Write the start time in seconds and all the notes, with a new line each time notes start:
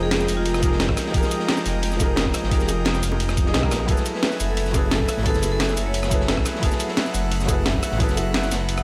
Already playing: F1 F3 G#3 D#4 G4 G#4 A#4 D#5 G5
0.03 G#4
0.11 snare, closed hi-hat, ride
0.20 snare, shaker
0.28 F1, closed hi-hat, open hi-hat, ride, shaker
0.37 F4
0.45 closed hi-hat, ride
0.54 cross-stick, snare, shaker
0.60 F3 D#4 G4, kick, closed hi-hat, ride, shaker
0.64 G#4 A#4
0.72 snare
0.80 snare, closed hi-hat, ride
0.89 G#1, kick, cross-stick
0.97 cross-stick, snare, closed hi-hat, open hi-hat, ride, shaker
1.06 snare
1.11 F1 F3 D#4 G4, kick, closed hi-hat, ride
1.16 G#4 A#4
1.23 snare, shaker
1.31 closed hi-hat, ride, shaker
1.40 snare
1.48 snare, closed hi-hat, ride
1.57 snare, shaker
1.66 F1, closed hi-hat, open hi-hat, ride, shaker
1.83 closed hi-hat, ride
1.92 snare, shaker
1.97 F3 D#4 G4, kick, closed hi-hat, ride, shaker
2.01 G#4 A#4, high bongo
2.16 snare, closed hi-hat, ride
2.26 kick
2.34 cross-stick, closed hi-hat, open hi-hat, ride, shaker
2.43 G#1, snare
2.48 F3 D#4 G4, kick, closed hi-hat, ride
2.53 G#4 A#4
2.60 F1, snare, shaker
2.68 closed hi-hat, ride, high bongo, shaker
2.85 snare, closed hi-hat, ride
2.95 snare, shaker
3.03 F1, closed hi-hat, open hi-hat, ride, shaker
3.12 high bongo
3.20 closed hi-hat, ride
3.29 cross-stick, snare, shaker
3.37 kick, closed hi-hat, ride, shaker
3.44 F3 D#4 G4 G#4 D#5, snare
3.54 C2, snare, closed hi-hat, ride
3.62 F3 D#4 G4 G#4 A#4, kick, cross-stick
3.71 A#1, cross-stick, snare, closed hi-hat, open hi-hat, ride, shaker
3.85 F#1 F#3 A3 E4 G#4 B4 E5 G#5, kick, closed hi-hat, ride
3.90 A4 B4
3.97 snare, shaker
4.06 closed hi-hat, ride, shaker
4.14 B4, snare
4.23 snare, closed hi-hat, ride
4.32 snare, shaker
4.40 F#1, closed hi-hat, open hi-hat, ride, shaker
4.49 A4
4.57 closed hi-hat, ride
4.66 snare, shaker
4.71 F#3 E4 G#4, kick, closed hi-hat, ride, high bongo, shaker
4.76 A4 B4
4.91 A4, snare, closed hi-hat, ride
5.00 kick
5.08 cross-stick, closed hi-hat, open hi-hat, ride, shaker
5.17 A1, snare
5.22 F#3 E4 G#4 A4, kick, closed hi-hat, ride
5.27 A4 B4
5.34 F#1, snare, shaker
5.43 closed hi-hat, ride, high bongo, shaker
5.52 A4
5.60 snare, closed hi-hat, ride
5.69 snare, shaker
5.77 F#1, closed hi-hat, open hi-hat, ride, shaker
5.86 C#5
5.94 closed hi-hat, ride
6.03 cross-stick, snare, shaker
6.08 F#3 E4 G#4, kick, closed hi-hat, ride, shaker
6.13 A4 B4
6.21 snare
6.28 snare, closed hi-hat, ride
6.37 A1, kick, cross-stick
6.45 cross-stick, snare, closed hi-hat, open hi-hat, ride, shaker
6.55 snare
6.60 F#1 F#3 E4 G#4 F#5, kick, closed hi-hat, ride
6.64 A4 B4
6.72 snare, shaker
6.80 closed hi-hat, ride, shaker
6.88 snare
6.97 snare, closed hi-hat, ride
7.06 snare, shaker
7.14 F#1, closed hi-hat, open hi-hat, ride, shaker
7.32 closed hi-hat, ride
7.40 snare, shaker
7.45 F#3 E4 G#4, kick, closed hi-hat, ride, high bongo, shaker
7.50 A4 B4
7.66 snare, closed hi-hat, ride
7.75 kick
7.83 cross-stick, closed hi-hat, open hi-hat, ride, shaker
7.91 A1, snare
7.97 F#3 E4 G#4, kick, closed hi-hat, ride
8.02 A4 B4
8.09 F#1, snare, shaker
8.17 closed hi-hat, ride, high bongo, shaker
8.34 snare, closed hi-hat, ride
8.43 snare, shaker
8.52 F#1, snare, closed hi-hat, open hi-hat, ride, shaker
8.69 closed hi-hat, ride
8.78 cross-stick, shaker